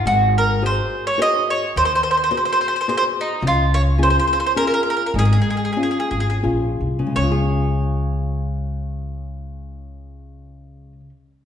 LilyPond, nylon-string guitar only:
\new Staff \with { instrumentName = "Nylon-string guitar" } { \time 3/4 \key des \major \tempo 4 = 100 aes4 <ges' aes' c''>4 <ges' aes' c''>4 | ees4 <ges' aes' c''>4 <ges' aes' c''>4 | des4 <des' f' aes'>4 <des' f' aes'>4 | aes4 <des' f' aes'>4 <des' f' aes'>4 |
<des aes des' f' aes'>2.~ | <des aes des' f' aes'>2. | }